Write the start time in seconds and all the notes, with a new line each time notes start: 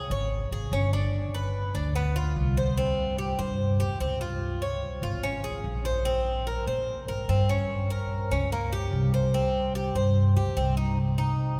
Already playing: G#4
0.10 G#1 C#5
0.51 G#1 G#4
0.71 G1 C#4
0.93 D4
1.34 B4
1.74 D2 D4
1.96 B3
2.16 F4
2.36 C2
2.57 C5
2.78 C4
3.18 G4
3.39 G2 C5
3.80 E2 G4
4.00 C#2 C4
4.21 F4
4.62 C#5
5.02 G#1 F4
5.23 C#4
5.44 G#4
5.64 A#1
5.85 C5
6.05 C4
6.47 A#4
6.66 A#2 C5
7.08 G#2 A#4
7.28 G2 C4
7.49 C#4
7.90 A#4
8.31 C#2 C#4
8.52 A#3
8.73 G4
8.93 C2
9.14 C5
9.34 C4
9.75 G4
9.95 G2 C5
10.36 C#2 G4
10.57 C2 C4
10.77 D#4
11.18 D#4